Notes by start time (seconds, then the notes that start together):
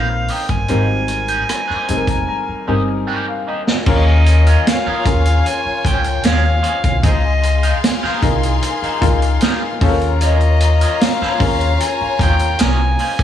Already playing: A#1 C4 D#4 G4 A#4 C5 F5
0.08 muted clean electric guitar stroke
0.28 A#3 D#4 G4 D#5, open hi-hat
0.32 G5
0.48 G1 G#5, muted clean electric guitar stroke, kick, closed hi-hat
0.68 G#1 G3 A#3 C4 D#4 G4 A#4 C5, closed hi-hat
1.08 muted clean electric guitar stroke, closed hi-hat
1.28 A#3 D#4 G4 C5, closed hi-hat
1.49 muted clean electric guitar stroke, cross-stick, closed hi-hat
1.68 A#3 D#4 G4 C5, muted upright bass stroke, cross-stick
1.88 F1 G3 C4 D#4 G#4 G#5, muted clean electric guitar stroke, closed hi-hat
1.97 A#4
2.07 A#5, muted clean electric guitar stroke, kick, closed hi-hat
2.27 A#5, muted clean electric guitar stroke
2.48 muted upright bass stroke
2.67 G1 G3 A#3 C4 D#4 G4 A#4 D#5 G#5
2.88 muted clean electric guitar stroke
3.07 A#3 D#4 G4 C5 G5
3.27 F5, muted clean electric guitar stroke
3.47 A#3 D#4 G4 D#5
3.67 muted clean electric guitar stroke, snare
3.86 D#2 G#3 C#4 F4 G#4 A#4 C#5 D#5 G#5, kick, crash
4.26 muted clean electric guitar stroke, closed hi-hat
4.46 G#3 C#4 F4 A#4, closed hi-hat
4.66 F5, muted clean electric guitar stroke, snare, closed hi-hat
4.87 G#3 C#4 F4 A#4, muted upright bass stroke
5.05 D#2 C#4 F4 G#4 A#4, kick, closed hi-hat
5.25 muted clean electric guitar stroke, closed hi-hat
5.46 G#5, muted clean electric guitar stroke, closed hi-hat
5.65 muted upright bass stroke
5.85 C#2 G#3 C#4 F4 C5 G5, kick, closed hi-hat
6.04 muted clean electric guitar stroke, closed hi-hat
6.23 D#2 G#3 C#4 F4 A#4 F5, snare, closed hi-hat
6.44 muted clean electric guitar stroke
6.62 G#3 C#4 F4 C5, closed hi-hat
6.83 C2, muted clean electric guitar stroke, kick, closed hi-hat
7.02 C#2 G#3 D#4 F4 G#4 A#4 C5 D#5 F5 C6, kick, closed hi-hat
7.43 muted clean electric guitar stroke, closed hi-hat
7.63 G#3 D#4 F4 A#4, closed hi-hat
7.84 muted clean electric guitar stroke, snare, closed hi-hat
8.03 G#3 D#4 F4 A#4, muted upright bass stroke, snare
8.22 C2 D#4 F4 G#4 A#4, kick, closed hi-hat
8.43 muted clean electric guitar stroke, closed hi-hat
8.62 muted clean electric guitar stroke, closed hi-hat
8.82 G#3 D#4 F4 A#4, muted upright bass stroke, closed hi-hat
9.01 C#2 D#4 F4 G#4 A#4, kick, closed hi-hat
9.22 muted clean electric guitar stroke, closed hi-hat
9.41 G#3 D#4 F4 A#4, snare, closed hi-hat
9.62 muted clean electric guitar stroke
9.81 D#2 G#3 C#4 F4 G#4 A4 C5 C#5 A#5, kick, open hi-hat
9.89 A#4
10.01 muted clean electric guitar stroke, closed hi-hat
10.21 G#3 C#4 F4 A#4 D#5, closed hi-hat
10.40 closed hi-hat
10.60 muted clean electric guitar stroke, closed hi-hat
10.81 G#3 C#4 F4 A#4, closed hi-hat
11.01 F5, muted clean electric guitar stroke, snare, closed hi-hat
11.21 G#3 C#4 F4 A#4, muted upright bass stroke, snare
11.39 D#2 C#4 F4 G#4 A#4, muted clean electric guitar stroke, kick, open hi-hat
11.61 muted clean electric guitar stroke, closed hi-hat
11.80 G#5, muted clean electric guitar stroke, closed hi-hat
12.01 muted upright bass stroke
12.19 D#2 G#3 C#4 F4 C5 G5, kick, closed hi-hat
12.39 muted clean electric guitar stroke, closed hi-hat
12.59 C2 G#3 C#4 F4 A#4 G#5, snare, closed hi-hat
12.79 muted clean electric guitar stroke
12.99 G#3 C#4 F4 C5, open hi-hat
13.19 A1, muted clean electric guitar stroke, kick, closed hi-hat